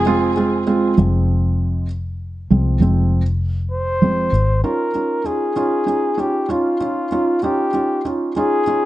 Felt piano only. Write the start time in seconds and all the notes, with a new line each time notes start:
0.06 G#3 C4 F4
0.37 G#3 C4 F4
0.67 G#3 C4 F4
0.98 F3 G#3 C4
2.50 F3 G#3 C4
2.80 F3 G#3 C4
4.02 F3 G#3 C4
4.64 C#4 D#4 F4
4.95 C#4 D#4 F4
5.24 C#4 D#4 F4
5.56 C#4 D#4 F4
5.86 C#4 D#4 F4
6.18 C#4 D#4 F4
6.49 C#4 D#4 F4
6.80 C#4 D#4 F4
7.12 C#4 D#4 F4
7.43 C#4 D#4 F4
7.74 C#4 D#4 F4
8.05 C#4 D#4 F4
8.36 C#4 D#4 F4
8.67 C#4 D#4 F4